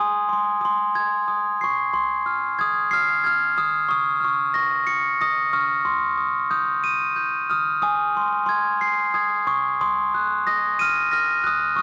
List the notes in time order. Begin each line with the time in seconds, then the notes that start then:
Already playing: G#5
0.00 D#6
0.29 C6
0.33 C6
0.61 D#6
0.65 C6
0.95 G#6
1.28 D#6
1.61 C#6 C7
1.93 C6
2.26 F6
2.59 D#6 G#6
2.91 F6 C7
3.24 F6 G#6
3.57 D#6 F6
3.89 C#6 D#6
4.20 F6
4.24 C#6
4.54 C#6 A#6
4.87 C#7
5.21 D#6 A#6
5.53 C#6 F6
5.85 C6
6.17 D#6
6.50 D#6 G6
6.84 D#7
7.16 G6
7.50 D#6 F6
7.82 G#5 D#6
8.15 C6 D#6
8.46 C6 G#6
8.81 C7
9.14 D#6 G#6
9.47 C#6 D#6
9.81 C6 D#6
10.14 F#6
10.47 D#6 A#6
10.79 F6 D#7
11.11 F6 A#6
11.44 D#6 F#6
11.76 C#6 D#6